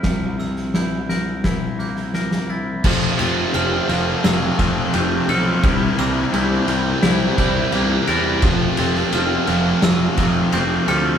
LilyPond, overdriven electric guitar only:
\new Staff \with { instrumentName = "Overdriven electric guitar" } { \clef bass \time 4/4 \key f \major \tempo 4 = 86 r1 | <f, c f>8 <f, c f>8 <f, c f>8 <f, c f>8 <f, c f>8 <f, c f>8 <f, c f>8 <f, c f>8 | <c g c'>8 <c g c'>8 <c g c'>8 <c g c'>8 <c g c'>8 <c g c'>8 <c g c'>8 <c g c'>8 | <f, c f>8 <f, c f>8 <f, c f>8 <f, c f>8 <f, c f>8 <f, c f>8 <f, c f>8 <f, c f>8 | }